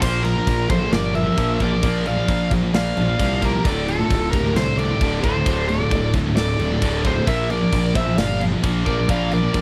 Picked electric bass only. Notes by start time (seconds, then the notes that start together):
0.02 A#1
0.47 A#1
0.70 A#1
0.92 G1
1.38 A#1
1.60 A#1
1.83 A#1
2.28 A#1
2.51 A#1
2.73 A#1
2.97 A#1
3.19 C2
3.65 D1
4.11 D1
4.33 D1
4.55 C2
5.01 D1
5.24 D1
5.46 D1
5.91 D1
6.14 D1
6.36 D1
6.58 D1
6.82 D1
7.27 A#1
7.73 A#1
7.95 A#1
8.18 G1
8.64 A#1
8.86 A#1
9.09 A#1
9.54 A#1